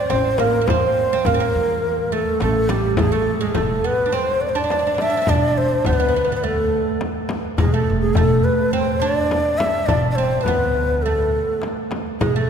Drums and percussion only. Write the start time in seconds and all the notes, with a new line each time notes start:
0.10 darbuka tek, frame drum
0.25 darbuka ka
0.38 darbuka tek, frame drum
0.67 frame drum, darbuka dum
1.12 darbuka ka
1.25 frame drum, darbuka dum
1.40 darbuka ka
1.55 darbuka ka
1.84 darbuka ka
2.12 darbuka ka
2.27 darbuka ka
2.40 darbuka tek, frame drum
2.55 darbuka ka
2.69 darbuka tek, frame drum
2.85 darbuka ka
2.97 frame drum, darbuka dum
3.28 darbuka ka
3.43 darbuka ka
3.55 frame drum, darbuka dum
3.85 darbuka ka
4.57 darbuka ka
4.70 darbuka tek, frame drum
4.98 darbuka tek, frame drum
5.15 darbuka ka
5.27 frame drum, darbuka dum
5.58 darbuka ka
5.71 darbuka ka
5.84 frame drum, darbuka dum
6.15 darbuka ka
6.87 darbuka ka
7.01 darbuka tek, frame drum
7.29 darbuka tek, frame drum
7.45 darbuka ka
7.58 darbuka dum, frame drum
7.87 darbuka ka
8.00 darbuka ka
8.15 frame drum, darbuka dum
8.45 darbuka ka
9.17 darbuka ka
9.31 darbuka tek, frame drum
9.59 darbuka tek, frame drum
9.74 darbuka ka
9.88 darbuka dum, frame drum
10.17 darbuka ka
10.30 darbuka ka
10.45 darbuka dum, frame drum
10.60 darbuka ka
10.75 darbuka ka
11.03 darbuka ka
11.33 darbuka ka
11.62 darbuka tek, frame drum
11.77 darbuka ka
11.91 darbuka tek, frame drum
12.07 darbuka ka
12.21 frame drum, darbuka dum